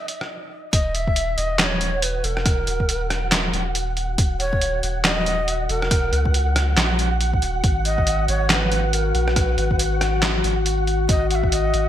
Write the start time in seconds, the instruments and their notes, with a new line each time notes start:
Already playing: ambient pad D#4, synth texture D#5, shakuhachi D#5
0.08 closed hi-hat
0.21 cross-stick
0.73 sub bass D#1, ambient pad F#4 F#5, shakuhachi D#5, synth texture F#5, kick, closed hi-hat
0.94 shakuhachi E5, closed hi-hat
1.07 kick
1.16 closed hi-hat
1.38 sub bass D#1, shakuhachi D#5, closed hi-hat
1.59 shakuhachi D#5, snare, clap, closed hi-hat
1.64 shakuhachi C#5
1.81 closed hi-hat
2.02 shakuhachi B4, closed hi-hat
2.24 sub bass E1, shakuhachi A#4, closed hi-hat
2.37 cross-stick
2.46 kick, cross-stick, closed hi-hat
2.67 sub bass D#1, closed hi-hat
2.80 kick
2.89 closed hi-hat
3.10 cross-stick, closed hi-hat
3.32 snare, clap, closed hi-hat
3.53 sub bass D#1, closed hi-hat
3.75 closed hi-hat
3.97 closed hi-hat
4.18 sub bass D#1, kick, closed hi-hat
4.40 shakuhachi C#5, closed hi-hat
4.53 kick
4.61 closed hi-hat
4.83 sub bass D#1, closed hi-hat
5.04 shakuhachi D#5, snare, clap, closed hi-hat
5.26 closed hi-hat
5.48 closed hi-hat
5.69 sub bass E1, shakuhachi A4, closed hi-hat
5.80 shakuhachi A#4, cross-stick
5.91 kick, cross-stick, closed hi-hat
6.12 sub bass C#2, closed hi-hat
6.25 kick
6.34 closed hi-hat
6.56 cross-stick, closed hi-hat
6.77 sub bass A#1, snare, clap, closed hi-hat
6.99 closed hi-hat
7.21 closed hi-hat
7.33 kick
7.42 sub bass D#1, closed hi-hat
7.64 sub bass G#1, kick, closed hi-hat
7.85 shakuhachi D#5, closed hi-hat
7.98 kick
8.07 closed hi-hat
8.28 sub bass G#1, shakuhachi C#5, closed hi-hat
8.50 shakuhachi B4, snare, clap, closed hi-hat
8.72 closed hi-hat
8.93 shakuhachi A#4, closed hi-hat
9.15 sub bass A#1, shakuhachi B4, closed hi-hat
9.28 cross-stick
9.36 kick, cross-stick, closed hi-hat
9.58 sub bass G#1, closed hi-hat
9.71 kick
9.79 closed hi-hat
10.01 cross-stick, closed hi-hat
10.23 snare, clap, closed hi-hat
10.44 sub bass G#1, closed hi-hat
10.66 closed hi-hat
10.87 closed hi-hat
11.09 sub bass G#1, shakuhachi D#5, kick, closed hi-hat
11.30 shakuhachi F#5, closed hi-hat
11.35 shakuhachi E5
11.43 kick
11.52 shakuhachi D#5, closed hi-hat
11.74 sub bass G#1, closed hi-hat